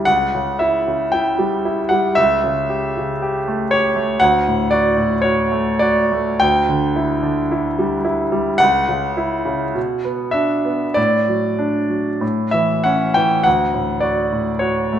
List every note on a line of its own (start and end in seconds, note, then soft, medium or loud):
0.05 2.14 C#2 soft
0.05 0.60 F#5 medium
0.35 0.77 C#3 soft
0.59 1.03 E4 soft
0.59 1.13 E5 medium
0.88 1.29 C#3 soft
1.12 1.55 E4 soft
1.12 1.90 G5 medium
1.39 1.80 G3 soft
1.65 2.07 E4 soft
1.89 2.17 G3 soft
1.89 2.16 F#5 medium
2.15 4.18 C#2 soft
2.15 3.71 E5 medium
2.44 2.86 C#3 soft
2.70 3.12 G4 soft
2.97 3.38 C#3 soft
3.22 3.62 G4 soft
3.48 3.87 A3 soft
3.71 4.12 G4 soft
3.71 4.21 C#5 medium
3.96 4.22 A3 soft
4.20 6.38 D2 soft
4.20 4.71 F#5 medium
4.48 4.88 A2 soft
4.71 5.14 F#4 soft
4.71 5.24 D5 medium
4.97 5.41 A2 soft
5.22 5.70 F#4 soft
5.22 5.81 C#5 medium
5.52 6.01 A3 soft
5.79 6.30 F#4 soft
5.79 6.41 D5 medium
6.12 6.42 A3 soft
6.40 8.57 D2 soft
6.40 8.05 G5 medium
6.69 7.13 D3 soft
6.96 7.40 E4 soft
7.23 7.67 D3 soft
7.52 7.95 E4 soft
7.79 8.23 G3 soft
8.05 8.49 E4 soft
8.32 8.60 G3 soft
8.58 9.72 C#2 soft
8.58 10.34 F#5 medium
8.88 9.35 C#3 soft
9.17 9.64 E4 soft
9.45 9.75 C#3 soft
9.74 10.92 B2 soft
10.05 10.53 B3 soft
10.31 10.83 D4 soft
10.31 10.95 E5 medium
10.65 10.96 B3 soft
10.94 12.18 A2 soft
10.94 12.21 D5 medium
11.28 11.78 F#3 soft
11.59 12.09 D4 soft
11.89 12.21 F#3 soft
12.21 13.42 A2 soft
12.51 13.04 E3 soft
12.51 12.84 E5 medium
12.84 13.34 C#4 soft
12.84 13.15 F#5 medium
13.14 13.46 E3 soft
13.14 13.45 G5 medium
13.43 14.99 D2 soft
13.43 14.03 F#5 medium
13.74 14.21 A2 soft
14.00 14.50 F#4 soft
14.00 14.61 D5 medium
14.32 14.81 A2 soft
14.59 14.99 F#4 soft
14.59 14.99 C#5 medium
14.93 14.99 A3 soft